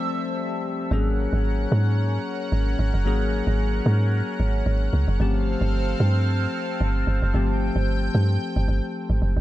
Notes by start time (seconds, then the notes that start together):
Already playing: F3 G3 A3 C4 G4 A4 E5
0.91 G#1 F#3 A#3 C#4 G#4 A#4 F#5
1.33 G#1
1.72 G#2
2.52 G#1
2.79 G#1
2.94 F#1
3.05 G#1 F#3 A#3 C#4 G#4
3.47 G#1
3.86 G#2
4.40 G#1
4.66 G#1
4.93 C#2
5.08 F#1
5.20 G1 F3 A3 C4 G4 A4 F5
5.61 G1
6.00 G2
6.81 G1
7.07 G1
7.22 F#1
7.34 G1 F3 A3 C4 G4 G5
7.76 G1
8.15 G2
8.56 G1
8.68 G1
9.10 G#1
9.22 F#1
9.37 G1